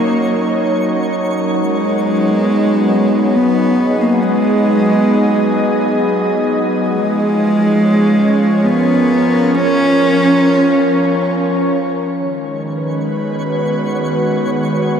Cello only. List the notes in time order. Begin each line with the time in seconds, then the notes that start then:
Already playing: A#3
1.60 G#3
3.36 B3
4.01 A#3
4.23 G#3
6.89 G#3
8.65 B3
9.55 C#4